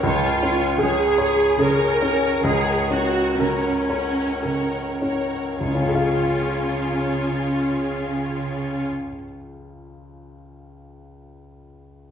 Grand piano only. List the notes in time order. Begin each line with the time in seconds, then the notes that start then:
0.03 C#2
0.43 C#4
0.78 G#4
1.18 C#5
1.59 G#4
2.02 C#4
2.44 C#2
2.91 C#4
3.40 A#4
3.90 C#5
4.43 A#4
5.02 C#4
5.61 C#2
5.68 C#3
5.74 C#4
5.82 F4
5.88 G#4
5.95 F5